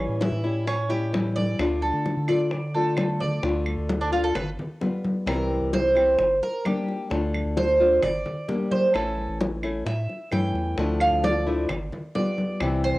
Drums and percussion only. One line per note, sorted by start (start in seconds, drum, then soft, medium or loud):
0.21 high bongo medium
0.21 high conga loud
0.45 high bongo soft
0.67 high bongo medium
0.67 high conga soft
0.67 claves medium
0.91 high bongo soft
0.91 high conga soft
1.14 high bongo medium
1.14 low bongo medium
1.14 high conga medium
1.38 high conga medium
1.59 high bongo medium
1.59 high conga soft
1.59 claves medium
1.82 high bongo soft
1.82 high conga soft
2.06 high bongo medium
2.06 high conga soft
2.28 high bongo soft
2.28 high conga soft
2.28 claves medium
2.51 high bongo medium
2.51 high conga soft
2.75 high bongo soft
2.75 high conga soft
2.97 high bongo medium
2.97 low bongo medium
2.97 high conga medium
2.97 claves medium
3.21 low conga medium
3.43 high bongo medium
3.43 high conga soft
3.66 high conga soft
3.66 claves medium
3.90 high bongo medium
3.90 high conga medium
4.13 high bongo soft
4.13 high conga soft
4.35 high bongo medium
4.35 high conga soft
4.35 low conga medium
4.35 claves medium
4.59 high bongo soft
4.59 high conga soft
4.59 low conga medium
4.81 high bongo soft
4.81 low bongo medium
4.81 high conga medium
5.05 high bongo soft
5.05 high conga medium
5.27 high bongo medium
5.27 high conga soft
5.27 claves medium
5.51 high conga soft
5.73 high bongo medium
5.73 high conga medium
5.96 high bongo soft
5.96 high conga soft
5.96 claves medium
6.19 high bongo medium
6.19 high conga soft
6.42 high bongo soft
6.42 high conga soft
6.65 high bongo soft
6.65 low bongo medium
6.65 high conga medium
6.65 claves medium
6.88 high bongo soft
7.11 high bongo medium
7.11 high conga soft
7.34 high conga soft
7.34 claves medium
7.57 high bongo medium
7.57 high conga medium
7.80 high bongo soft
7.80 high conga soft
8.03 high bongo medium
8.03 high conga soft
8.03 low conga medium
8.03 claves medium
8.26 high bongo soft
8.26 high conga soft
8.26 low conga medium
8.48 high bongo soft
8.48 low bongo medium
8.48 high conga medium
8.71 high bongo soft
8.71 high conga medium
8.94 high bongo medium
8.94 high conga soft
8.94 claves medium
9.18 high conga soft
9.41 high bongo medium
9.41 high conga medium
9.63 high bongo soft
9.63 high conga soft
9.63 claves medium
9.87 high bongo medium
9.87 high conga soft
10.09 high bongo soft
10.09 high conga soft
10.32 high bongo soft
10.32 low bongo medium
10.32 high conga medium
10.32 claves medium
10.55 high bongo soft
10.78 high bongo medium
10.78 high conga soft
11.00 high conga soft
11.00 claves medium
11.24 high bongo medium
11.24 high conga medium
11.47 high bongo soft
11.47 high conga soft
11.69 high bongo medium
11.69 high conga soft
11.69 low conga medium
11.69 claves medium
11.92 high bongo soft
11.92 high conga soft
11.92 low conga medium
12.15 high bongo soft
12.15 low bongo medium
12.15 high conga medium
12.38 high bongo soft
12.38 high conga medium
12.60 high bongo medium
12.60 claves medium
12.84 high conga soft